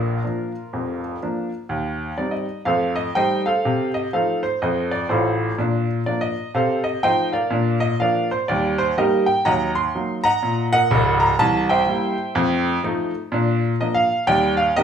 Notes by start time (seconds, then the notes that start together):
Already playing: A#1 A#2 D4 F4 A#4
0.24 F3 A#3 D4
0.73 F1 F2
1.22 F3 A#3 D4
1.69 D#2
2.18 G3 C4 D#4 D5
2.31 D#5
2.65 F2 A3 A4 C5 F5
2.96 D#5
3.15 G3 A3 D#4 C5 D#5 G5
3.46 A4 C5 F5
3.65 C3
3.94 D#5
4.13 F3 A3 D#4 A4 C5 F5
4.43 C5
4.62 F2 A4 C5 D#5
4.91 D5
5.09 A1 A2 F4 A4 C5
5.58 A#2 D4
6.06 F3 A#3 D4 D5
6.21 D#5
6.54 C3 A4 C5 F5
6.84 D#5
7.03 F3 A3 D#4 C5 D#5 G5
7.33 A#4 D5 F5
7.50 A#2 D4
7.80 D#5
8.00 F3 A#3 D4 A#4 D5 F5
8.31 C5
8.48 D#2 G3 D5
8.78 C5
8.97 G3 A#3 D#4 G4 A#4 D#5
9.26 G5
9.45 D#2 F#3 D#5 F#5 A#5
9.75 C6
9.95 F#3 A#3 D#4
10.24 D#5 F#5 A#5
10.42 A#2
10.73 A#4 D#5 F#5
10.91 C#1 C#2
11.20 A#5
11.39 C2 E3 A5
11.69 C5 E5 G5
11.87 G3 A#3 E4
12.35 F2 A3
12.83 F3 A3 D#4
13.32 A#2 D4
13.80 F3 A#3 D4 D#5
13.94 F5
14.27 D#2 G3 D5 D#5 G5
14.57 F5
14.76 D#3 A#3 D4 G4 A#4 D#5